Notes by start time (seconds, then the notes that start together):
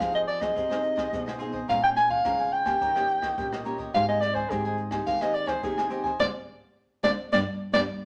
Already playing: F5
0.00 C3 F3 C4 D#4 F4 G#4 C5 D#5, kick, cross-stick, closed hi-hat
0.13 G#4 C5 D#5, closed hi-hat
0.28 D5, closed hi-hat
0.40 C4 D#4 G#4 C5 D#5, kick, cross-stick
0.55 C3 F3 F4 G#4 C5 D#5, kick, closed hi-hat
0.70 C4 D#4 G#4 C5 D#5, cross-stick
0.83 muted cavaquinho stroke, closed hi-hat
0.96 G#4 C5 D#5, kick, cross-stick
1.13 B2 C4 D#4 G#4, kick, closed hi-hat
1.26 G#4 C5 D#5, cross-stick, closed hi-hat
1.39 C4 D#4 F4 G#4 C5 D#5, closed hi-hat
1.52 G#4 C5 D#5, kick, closed hi-hat
1.68 A#2 G#3 C#4 F4 A#4 C#5 F5 G#5, kick, cross-stick, closed hi-hat
1.82 G#3 C#4 F4 C#5 F5 G5 G#5, closed hi-hat
1.96 G#5, muted cavaquinho stroke, cross-stick, closed hi-hat
2.08 C#5 F5 G#5, kick
2.24 F2 C#3 G#3 C#4 F4 A#4 C#5 F5 G#5, kick, cross-stick, closed hi-hat
2.39 C#5 F5 G#5, closed hi-hat
2.52 G5, closed hi-hat
2.65 A#3 C#4 G4 C#5 F5 G#5, kick, cross-stick
2.81 D#3 D#4 G4 C#5 D#5, kick, closed hi-hat
2.95 A#3 C#4 G4 C#5 D#5, cross-stick, closed hi-hat
3.09 muted cavaquinho stroke, closed hi-hat
3.22 G4 C#5 D#5, kick, cross-stick, closed hi-hat
3.38 A#2 A#3 C#4 G4, kick, closed hi-hat
3.52 G4 C#5 D#5, cross-stick
3.65 A#3 C#4 D#4 G4 C#5 D#5, closed hi-hat
3.78 G4 C#5 D#5, kick
3.93 G#2 G#3 C4 D#4 G4 C5 D#5 F5 G#5, kick, cross-stick, closed hi-hat
4.08 C4 D#4 G4 C5 D#5 G#5
4.21 D5, muted cavaquinho stroke, cross-stick, closed hi-hat
4.34 C5 D#5 G#5, kick, closed hi-hat
4.50 G#2 D#3 C4 D#4 G4 G#4 C5 D#5 G#5, kick, cross-stick, closed hi-hat
4.65 C5 D#5 G#5, closed hi-hat
4.78 closed hi-hat
4.91 C4 D#4 G4 C5 D#5 G#5, kick, cross-stick, closed hi-hat
5.06 D#3 G#3 G4 C5 D#5 F5 G#5, kick, closed hi-hat
5.21 C4 D#4 G4 C5 D#5 G#5, cross-stick
5.34 D5, muted cavaquinho stroke, closed hi-hat
5.47 C5 D#5 G#5, kick, cross-stick
5.63 C3 D#3 C4 D#4 G4 G#4, kick, closed hi-hat
5.77 C5 D#5 G#5, cross-stick, closed hi-hat
5.90 C4 D#4 G4 C5 D#5 G#5, closed hi-hat
6.04 C5 D#5 G#5, kick, closed hi-hat
6.19 D3 G#3 C4 D4 C5 D5 F5, kick, snare
7.03 D3 G#3 C4 D4 C5 D5 F5, kick, snare
7.32 G2 G3 B3 D4 G4 B4 D5, kick, snare
7.72 G2 G3 B3 D4 G4 B4 D5, kick, snare